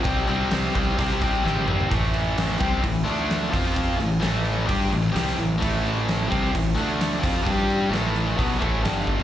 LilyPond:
<<
  \new Staff \with { instrumentName = "Distorted electric guitar" } { \clef bass \time 4/4 \key a \minor \tempo 4 = 130 <c g c'>8 <c g c'>8 <c g c'>8 <c g c'>8 <c g c'>8 <c g c'>8 <c g c'>8 <c g c'>8 | <a, e a>4. <c g c'>8 <a, e>8 <d a d'>4 <f c' f'>8~ | <f c' f'>8 <a, e>8 <a, e a>4 <g d' g'>8 <a, e>8 <c g c'>8 <a, e>8 | <a, e a>4. <c g c'>8 <a, e>8 <d a d'>4 <f c' f'>8 |
<g d' g'>4 <a, e a>4 <b, fis b>8 <a, e a>8 <g, d g>4 | }
  \new Staff \with { instrumentName = "Distorted electric guitar" } { \clef bass \time 4/4 \key a \minor <c g c'>8 <c g c'>8 <c g c'>8 <c g c'>8 <c g c'>8 <c g c'>8 <c g c'>8 <c g c'>8 | <a, e a>4. <c g c'>8 <a, e>8 <d a d'>4 <f c' f'>8~ | <f c' f'>8 <a, e>8 <a, e a>4 <g d' g'>8 <a, e>8 <c g c'>8 <a, e>8 | <a, e a>4. <c g c'>8 <a, e>8 <d a d'>4 <f c' f'>8 |
<g d' g'>4 <a, e a>4 <b, fis b>8 <a, e a>8 <g, d g>4 | }
  \new Staff \with { instrumentName = "Fingered electric bass" } { \clef bass \time 4/4 \key a \minor c,8 c,8 c,8 c,8 c,4 gis,,4 | a,,4. c,8 a,,8 d,4 f,8~ | f,8 a,,8 a,,4 g,8 a,,8 c,8 a,,8 | a,,4. c,8 a,,8 d,4 f,8 |
g,4 a,,4 b,,8 a,,8 g,,4 | }
  \new DrumStaff \with { instrumentName = "Drums" } \drummode { \time 4/4 <cymc bd>8 cymc8 <cymc sn>8 <cymc bd>8 <cymc bd>8 <cymc bd>8 sn16 tommh16 toml16 tomfh16 | <cymc bd>8 cymc8 <cymc sn>8 <cymc bd>8 <cymc bd>8 cymc8 <cymc sn>8 <cymc bd>8 | <cymc bd>8 cymc8 <cymc sn>8 cymc8 <cymc bd>8 cymc8 <cymc sn>8 cymc8 | <cymc bd>8 cymc8 <cymc sn>8 <cymc bd>16 sn16 <cymc bd>8 cymc8 <cymc sn>8 <cymc bd>8 |
<cymc bd>8 cymc8 <cymc sn>8 cymc16 sn16 <cymc bd>8 <cymc bd>8 <cymc sn>8 bd16 tomfh16 | }
>>